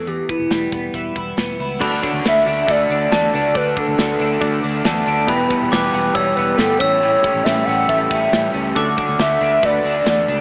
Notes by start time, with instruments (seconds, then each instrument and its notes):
Already playing: fingered electric bass E2
0.07 clean electric guitar E2, soft synth lead G4, closed hi-hat
0.29 clean electric guitar B3, soft synth lead E4, kick, closed hi-hat
0.39 fingered electric bass E1
0.50 fingered electric bass E1, clean electric guitar G3, snare, closed hi-hat
0.72 fingered electric bass E1, clean electric guitar B3, kick, closed hi-hat
0.94 fingered electric bass E1, clean electric guitar E3, kick, closed hi-hat
1.15 fingered electric bass E1, clean electric guitar E4, kick, closed hi-hat
1.37 fingered electric bass E1, clean electric guitar B3, snare, closed hi-hat
1.59 fingered electric bass C#2, clean electric guitar E4, open hi-hat
1.80 fingered electric bass D2, overdriven electric guitar D3 A3 D4 F#4, synth keys D4 F#4 A4 D5, glockenspiel B5, kick, crash
2.02 overdriven electric guitar A3 D4 F#4, synth keys D4 F#4 A4 C#5, kick, hi-hat pedal, open hi-hat
2.13 fingered electric bass D2
2.23 fingered electric bass D2, overdriven electric guitar D3 A3 D4 F#4, synth keys D4 F#4 A4 C#5, snare, hi-hat pedal, open hi-hat
2.28 soft synth lead E5
2.46 fingered electric bass D2, overdriven electric guitar A3 D4 F#4, synth keys D4 F#4 A4 D5, soft synth lead E5, hi-hat pedal, open hi-hat
2.67 fingered electric bass D2, overdriven electric guitar D3 A3 D4 F#4, synth keys D4 F#4 A4 E5, soft synth lead D5, kick, hi-hat pedal, open hi-hat
2.90 fingered electric bass D2, synth keys D4 F#4 A4 E5, clean electric guitar D4, hi-hat pedal, open hi-hat
3.10 fingered electric bass E2, overdriven electric guitar D3 A3 D4 F#4, synth keys D4 F#4 A4 D5, soft synth lead D5, glockenspiel A5, snare, hi-hat pedal, open hi-hat
3.32 fingered electric bass C#2, overdriven electric guitar A3 D4 F#4, synth keys D4 F#4 A4 B4, hi-hat pedal, open hi-hat
3.54 fingered electric bass D2, overdriven electric guitar D3 A3 D4 F#4, synth keys D4 F#4 A4 D5, soft synth lead B4, kick, hi-hat pedal, open hi-hat
3.75 overdriven electric guitar A3 D4 F#4, synth keys D4 F#4 A4 D5, soft synth lead A4, kick, hi-hat pedal, open hi-hat
3.88 fingered electric bass D2
3.97 fingered electric bass D2, overdriven electric guitar D3 A3 D4 F#4, synth keys D4 F#4 A4 B4, snare, hi-hat pedal, open hi-hat
4.19 fingered electric bass D2, synth keys D4 F#4 A4 E5, clean electric guitar D4, hi-hat pedal, open hi-hat
4.41 fingered electric bass D2, overdriven electric guitar D3 A3 D4 F#4, synth keys D4 F#4 A4 D5, kick, hi-hat pedal, open hi-hat
4.63 fingered electric bass D2, synth keys D4 F#4 A4 D5, clean electric guitar D4, hi-hat pedal, open hi-hat
4.84 fingered electric bass E2, overdriven electric guitar D3 A3 D4, synth keys D4 F#4 A4 D5, glockenspiel A5, snare, hi-hat pedal, open hi-hat
4.88 overdriven electric guitar F#4
5.06 fingered electric bass D2, synth keys D4 F#4 A4 D5, clean electric guitar D4, hi-hat pedal, open hi-hat
5.26 fingered electric bass E1, overdriven electric guitar E2 B2 E3 G3 B3 G4, synth keys B3 E4 G4 B4, glockenspiel B5, kick, hi-hat pedal, open hi-hat
5.48 overdriven electric guitar E3 G3 B3 G4, synth keys B3 E4 G4 B4, kick, hi-hat pedal, open hi-hat
5.61 fingered electric bass E1
5.69 fingered electric bass E1, overdriven electric guitar E3 G3 B3 G4, synth keys B3 E4 G4 B4, soft synth lead B4, glockenspiel D6, snare, hi-hat pedal, open hi-hat
5.92 fingered electric bass E1, synth keys B3 E4 G4 B4, clean electric guitar B3, soft synth lead B4, hi-hat pedal, open hi-hat
6.13 fingered electric bass E1, overdriven electric guitar E2 B2 E3 G3 B3 G4, synth keys B3 E4 G4 D5, soft synth lead C#5, glockenspiel E6, kick, hi-hat pedal, open hi-hat
6.36 fingered electric bass E1, synth keys B3 E4 G4 B4, clean electric guitar B3, soft synth lead B4, hi-hat pedal, open hi-hat
6.57 fingered electric bass G1, overdriven electric guitar E3 G3 B3, synth keys B3 E4 G4 B4, soft synth lead A4, snare, hi-hat pedal, open hi-hat
6.61 overdriven electric guitar G4
6.78 fingered electric bass A1, clean electric guitar A2, overdriven electric guitar G3 C#4 G4, synth keys C#4 E4 G4 A4, soft synth lead C#5, glockenspiel E6, kick, hi-hat pedal, open hi-hat
7.01 overdriven electric guitar A2 E3 G3 C#4 G4, hi-hat pedal, open hi-hat
7.21 synth keys C#4 E4 G4 A4, overdriven electric guitar C#4 G4, kick, hi-hat pedal, open hi-hat
7.26 overdriven electric guitar G3
7.34 fingered electric bass A1
7.44 fingered electric bass A1, overdriven electric guitar E3 G3 C#4, synth keys C#4 E4 G4 B4, soft synth lead E5, snare, hi-hat pedal, open hi-hat
7.49 overdriven electric guitar G4
7.65 fingered electric bass A1, overdriven electric guitar G3 C#4 G4, synth keys C#4 E4 G4 B4, soft synth lead F#5, hi-hat pedal, open hi-hat
7.88 fingered electric bass A1, overdriven electric guitar A2 E3 G3 C#4 G4, synth keys C#4 E4 G4 A4, soft synth lead E5, kick, hi-hat pedal, open hi-hat
8.10 fingered electric bass A1, synth keys C#4 E4 G4 A4, clean electric guitar C#4, soft synth lead E5, kick, hi-hat pedal, open hi-hat
8.32 fingered electric bass A1, overdriven electric guitar E3 G3 C#4 G4, synth keys C#4 E4 G4 B4, snare, hi-hat pedal, open hi-hat
8.54 fingered electric bass C#2, clean electric guitar C#4, synth keys C#4 E4 G4 A4, hi-hat pedal, open hi-hat
8.75 fingered electric bass D2, overdriven electric guitar D3 A3 D4 F#4, synth keys A3 D4 F#4 A4, glockenspiel D6, kick, hi-hat pedal, open hi-hat
8.97 synth keys A3 D4 F#4 A4, overdriven electric guitar D4 F#4, kick, hi-hat pedal, open hi-hat
9.01 overdriven electric guitar A3
9.09 fingered electric bass D2
9.19 fingered electric bass D2, overdriven electric guitar D3 A3 D4, synth keys A3 D4 F#4 A4, soft synth lead E5, snare, hi-hat pedal, open hi-hat
9.23 overdriven electric guitar F#4
9.40 fingered electric bass D2, synth keys A3 D4 F#4 B4, clean electric guitar D4, hi-hat pedal, open hi-hat
9.62 fingered electric bass D2, overdriven electric guitar D3 A3 D4 F#4, synth keys A3 D4 F#4 B4, soft synth lead D5, kick, hi-hat pedal, open hi-hat
9.84 fingered electric bass D2, synth keys A3 D4 F#4 B4, clean electric guitar D4, hi-hat pedal, open hi-hat
10.05 fingered electric bass E2, overdriven electric guitar D3 A3 D4 F#4, synth keys A3 D4 F#4 A4, soft synth lead D5, snare, hi-hat pedal, open hi-hat
10.27 fingered electric bass C#2, synth keys A3 D4 F#4 B4, clean electric guitar D4, hi-hat pedal, open hi-hat